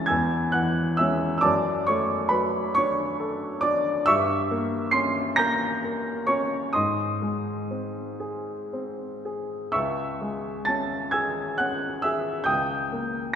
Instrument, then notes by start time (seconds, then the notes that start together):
upright piano
Already playing: C#2 E3 G#3 C#4 E5 A5 C#6 E6 A6
0.06 G#5 E6 G#6
0.10 E2
0.52 E3 F#5 F#6
0.97 G#3 C#4 E5 E6
1.38 D6 E6
1.42 F#2 D5 A5
1.87 A3 C#5 C#6
2.29 F#3 B4 B5
2.75 D4 C#5 C#6
3.20 A4
3.61 D4 D5 D6
4.06 G2 E5 C#6 E6
4.51 A#3
4.91 C#4 C6 C7
5.36 A#3 A#5 G6 A#6
5.84 A#4
6.27 C#4 C#5 C#6
6.73 G#2 D#5 C6 D#6
7.22 G#3
7.71 C4
8.20 G#4
8.73 C4
9.25 G#4
9.72 C#2 E5 C#6 E6
10.21 G#3
10.65 C#4 A5 A6
11.11 G#4 G#5 E6 G#6
11.58 C#4 F#5 F#6
12.02 G#4 E5 E6
12.44 C#2 G5 D#6 G6
12.92 A#3